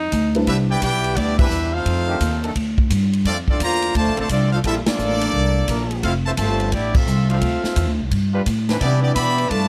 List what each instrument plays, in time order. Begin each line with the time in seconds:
Already playing: upright bass F2, alto saxophone D#4
0.12 upright bass D2, kick, hi-hat pedal, ride
0.35 upright piano G3 C4 D4 E4 B4, ride
0.47 upright bass C2, trombone section G3 B3 E4, trumpet section D4 G4 B4 E5, kick, ride
0.69 trombone section B3 E4 G4, trumpet section E4 B4 D5 G5
0.82 upright bass B1, trombone section B3 E4 G4, trumpet section E4 B4 D5 G5, kick, hi-hat pedal, ride
1.04 ride
1.16 upright bass D2, trombone section G3 B3 D4, trumpet section B3 E4 G4 D5, kick, ride
1.38 trombone section E3 G3 B3 C4 D4 E4 B4, trumpet section D4 G4 B4 E5, kick, crash
1.50 upright bass E2, hi-hat pedal
1.73 trombone section A3 C4 F4, trumpet section D#4 A4 C5 F5
1.85 upright bass F2, kick, ride
2.08 trombone section D#3 A3 D4 G4
2.20 upright bass D#2, kick, hi-hat pedal, ride
2.43 trombone section D#3 A3 D4 A4, ride
2.55 upright bass D2, kick, ride
2.78 kick
2.90 upright bass G2, kick, hi-hat pedal, ride
3.13 ride
3.25 upright bass F2, trombone section F3 A3 D4, trumpet section C4 F4 A4 D5, kick, ride
3.48 trombone section F3 A3 D4, trumpet section C4 F4 A4 D5, kick
3.60 upright bass E2, trombone section D3 A#3 F4, trumpet section F4 C5 D5 A#5, kick, hi-hat pedal, ride
3.82 ride
3.95 upright bass D2, trombone section D3 F3 A3, trumpet section F4 C5 D5 A5, kick, ride
4.06 upright bass A#1
4.16 upright bass A1, trombone section D3 F3 A3 A#3 C4 A4, ride
4.20 trumpet section F4 C5 D5 A5
4.29 upright bass C2, trombone section F3 A3 D4, trumpet section C4 F4 A4 D5, kick, hi-hat pedal, ride
4.53 trombone section A3 D4 F4, trumpet section D4 A4 C5 F5
4.64 upright bass A#1, trombone section G3 A#3 E4 F4 A4, trumpet section C4 F4 A4 E5, kick, ride
4.86 trombone section F3 A#3 D4, trumpet section A#3 F4 A4 D5, muted upright bass stroke, snare, ride
4.98 upright bass A1, hi-hat pedal
5.21 ride
5.33 upright bass C2, kick
5.68 upright bass A#1, trombone section A#3 D4 E4 A#4, kick, hi-hat pedal, ride
5.91 ride
6.03 upright bass F1, trombone section A3 C4 F4, trumpet section C4 E4 A4 F5, kick, ride
6.26 trombone section C3 E3 A3, trumpet section F4 C5 E5 A5
6.37 upright bass G1, trombone section C3 F3 A3, trumpet section F4 C5 E5 A5, kick, hi-hat pedal, ride
6.60 ride
6.72 upright bass A1, trumpet section B3 E4 G4 D5, trombone section D4, kick, ride
6.93 trombone section A3 C4 F4, trumpet section C4 F4 A4 E5, kick, crash
7.06 upright bass C2, hi-hat pedal
7.29 trombone section F3 A3 C4 D4 E4 F4 C5, trumpet section C4 A4 E5 F5, ride
7.42 upright bass D2, kick, ride
7.63 muted upright bass stroke, snare
7.76 upright bass E2, kick, hi-hat pedal, ride
7.87 upright bass D2
7.99 upright bass C2
8.11 upright bass G2, kick, ride
8.32 trombone section G3 D4 F4 B4
8.46 upright bass A2, kick, hi-hat pedal, ride
8.69 trombone section E3 C4 D4 B4, snare, ride
8.80 upright bass C3, trombone section E3 G3 B3 D4 B4, trumpet section B3 E4 G4 D5, kick, ride
9.02 trombone section G3 B3 D4, trumpet section B3 E4 G4 D5
9.14 upright bass B2, trombone section E3 G3 B3, trumpet section G4 D5 E5 B5, kick, hi-hat pedal, ride
9.38 ride
9.49 upright bass G2, trombone section A3, trumpet section F4 B4 D5 A5, kick, ride